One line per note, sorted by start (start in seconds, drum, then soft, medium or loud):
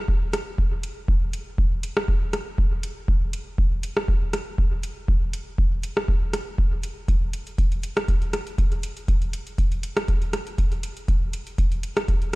0.08 kick loud
0.33 cross-stick medium
0.33 closed hi-hat medium
0.58 kick loud
0.83 closed hi-hat medium
1.08 kick loud
1.33 closed hi-hat medium
1.58 kick loud
1.83 closed hi-hat medium
1.97 cross-stick medium
2.08 kick loud
2.33 cross-stick medium
2.33 closed hi-hat medium
2.58 kick loud
2.83 closed hi-hat medium
3.08 kick loud
3.33 closed hi-hat medium
3.58 kick loud
3.83 closed hi-hat medium
3.97 cross-stick medium
4.08 kick loud
4.33 cross-stick medium
4.33 closed hi-hat medium
4.58 kick loud
4.83 closed hi-hat medium
5.08 kick loud
5.33 closed hi-hat medium
5.58 kick loud
5.83 closed hi-hat medium
5.97 cross-stick medium
6.08 kick loud
6.33 cross-stick medium
6.33 closed hi-hat medium
6.58 kick loud
6.83 closed hi-hat medium
7.08 kick loud
7.08 closed hi-hat soft
7.33 closed hi-hat medium
7.47 closed hi-hat soft
7.58 kick loud
7.58 closed hi-hat soft
7.72 closed hi-hat soft
7.83 closed hi-hat medium
7.97 cross-stick medium
7.97 closed hi-hat soft
8.08 kick loud
8.08 closed hi-hat soft
8.22 closed hi-hat soft
8.33 cross-stick medium
8.33 closed hi-hat medium
8.47 closed hi-hat soft
8.58 kick loud
8.58 closed hi-hat soft
8.72 closed hi-hat soft
8.83 closed hi-hat medium
8.97 closed hi-hat soft
9.08 kick loud
9.08 closed hi-hat soft
9.22 closed hi-hat soft
9.33 closed hi-hat medium
9.47 closed hi-hat soft
9.58 kick loud
9.58 closed hi-hat soft
9.72 closed hi-hat soft
9.83 closed hi-hat medium
9.97 cross-stick medium
9.97 closed hi-hat soft
10.08 kick loud
10.08 closed hi-hat soft
10.22 closed hi-hat soft
10.33 cross-stick medium
10.33 closed hi-hat medium
10.47 closed hi-hat soft
10.58 kick loud
10.58 closed hi-hat soft
10.72 closed hi-hat soft
10.83 closed hi-hat medium
10.97 closed hi-hat soft
11.08 kick loud
11.08 closed hi-hat soft
11.33 closed hi-hat medium
11.47 closed hi-hat soft
11.58 kick loud
11.58 closed hi-hat soft
11.72 closed hi-hat soft
11.83 closed hi-hat medium
11.97 cross-stick medium
11.97 closed hi-hat soft
12.08 kick loud
12.08 closed hi-hat soft
12.22 closed hi-hat soft